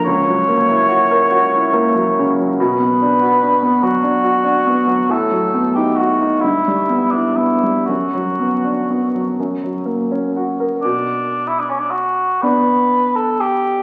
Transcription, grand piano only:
X:1
M:6/8
L:1/16
Q:3/8=44
K:Bm
V:1 name="Grand piano"
C,, F, ^A, E F ^A F E A, F, C, F, | B,, B, D F D B, F, D F D B, F, | A,, F, B, ^D F D G,, G, B, E B, G, | F,, F, B, D B, F, F,, F, ^A, C F ^A |
B,,6 [B,D]6 |]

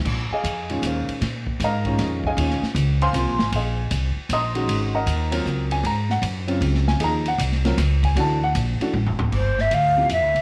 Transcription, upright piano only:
X:1
M:3/4
L:1/8
Q:"Swing" 1/4=155
K:Abmix
V:1 name="Upright piano"
z [Aefa]3 [FBcf]2 | z2 [Befb]3 [Aefa]- | [Aefa] z2 [cfac']3 | [Aefa]2 z2 [ebc'e']2- |
[ebc'e'] [Begb]2 z2 a | b g z3 a | b g z3 a | =a ^f z4 |
[K:Gdor] z6 |]
V:2 name="Upright piano"
z3 [B,,E,A,D]3 | z3 [B,,E,A,D]3 | [B,,E,A,D] z3 [C,F,B,F] z | z4 z [E,A,DG]- |
[E,A,DG]2 z [G,CFB]3 | z3 [D,G,CF]3 | [F,B,EA] z2 [G,CFB] z2 | [=E,=A,=D^F] z2 [E,A,DF] z2 |
[K:Gdor] z3 [C,F,B,EG] z2 |]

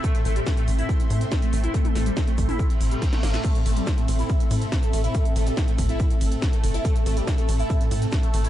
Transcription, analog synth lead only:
X:1
M:4/4
L:1/16
Q:1/4=141
K:Am
V:1 name="Analog synth lead"
A, z A, G, z A, z E z4 z A, A, E | A, z A, G, z A, z E z3 G, z A, _B, A, | A, z A, G, z A, z E z4 z A, A, E | A, z A, G, z A, z E z4 z A, A, E |
A, z A, G, z A, z E z4 z A, A, E |]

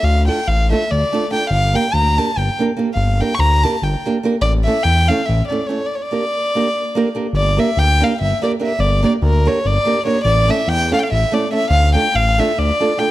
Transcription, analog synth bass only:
X:1
M:7/8
L:1/8
Q:1/4=144
K:none
V:1 name="Analog synth bass" clef=bass
D,,2 A,,,2 D,, z2 | G,,,2 D,,2 G,,, z2 | G,,,2 D,,2 G,,, z2 | A,,,2 E,,2 A,,, z2 |
z6 z | G,,,2 D,,2 G,,, z2 | G,,,2 D,,2 G,,, z2 | A,,,2 E,,2 A,,, z2 |
D,,2 A,,,2 D,, z2 |]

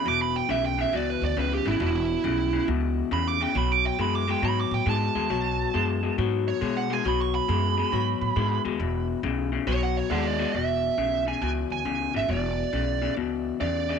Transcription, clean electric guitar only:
X:1
M:4/4
L:1/8
Q:"Swing" 1/4=137
K:Emix
V:1 name="Clean electric guitar" clef=bass
[E,,B,,]2 [E,,C,] [E,,C,] [E,,B,,]2 [E,,C,] [E,,C,] | [E,,B,,]2 [E,,C,] [E,,C,] [E,,B,,]2 [E,,C,] [E,,C,] | [B,,F,]2 [B,,G,] [B,,G,] [B,,F,]2 [B,,G,] [B,,G,] | [B,,F,]2 [B,,G,] [B,,G,] [B,,F,]2 [B,,G,] [B,,G,] |
[B,,F,]2 [B,,G,] [B,,G,] [B,,F,]2 [B,,G,] [B,,G,] | [E,,B,,]2 [E,,C,] [E,,C,] [B,,F,]2 [B,,G,] [B,,G,] | [E,,B,,]2 [E,,C,] [E,,C,] [E,,B,,]2 [E,,C,] [E,,C,] | [E,,B,,]2 [E,,C,] [E,,C,] [E,,B,,]2 [E,,C,] [E,,C,] |]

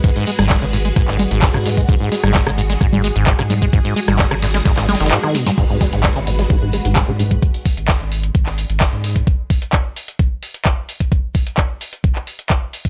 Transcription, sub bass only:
X:1
M:4/4
L:1/16
Q:1/4=130
K:G#m
V:1 name="Sub bass" clef=bass
G,,, z2 G,,,2 G,,,3 G,,,3 G,,,2 G,,3 | G,,, z2 G,,,2 G,,,3 G,,,3 G,,,2 G,,3 | G,,, z2 G,,,2 G,,,3 G,,,3 F,,, z4 | G,,, z2 G,,,2 G,,,3 G,,,3 G,,,2 G,,3 |
G,,, z2 G,,,2 G,,,3 G,,,3 G,,,2 G,,3 | z16 | z16 |]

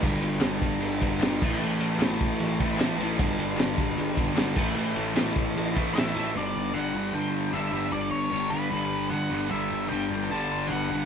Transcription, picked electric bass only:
X:1
M:4/4
L:1/8
Q:1/4=152
K:Glyd
V:1 name="Picked electric bass" clef=bass
G,,, G,,, G,,, G,,, G,,, G,,, G,,, A,,, | A,,, A,,, A,,, A,,, A,,, A,,, A,,, A,,, | G,,, G,,, G,,, G,,, G,,, G,,, G,,, A,,, | A,,, A,,, A,,, A,,, A,,, A,,, A,,, A,,, |
G,,, G,,, G,,, G,,, G,,,2 G,,, G,,, | G,,, G,,, G,,, G,,, G,,,2 G,,, G,,, | G,,, G,,, G,,, G,,, G,,,2 G,,, G,,, |]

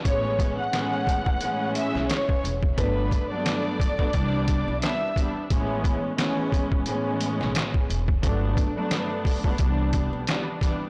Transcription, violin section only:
X:1
M:4/4
L:1/16
Q:"Swing 16ths" 1/4=88
K:A
V:1 name="Violin section"
[cc']3 [ff']6- [ff'] [ee']2 [cc']2 z2 | [Bb]3 [dd']8- [dd'] [ee']2 z2 | z16 | z16 |]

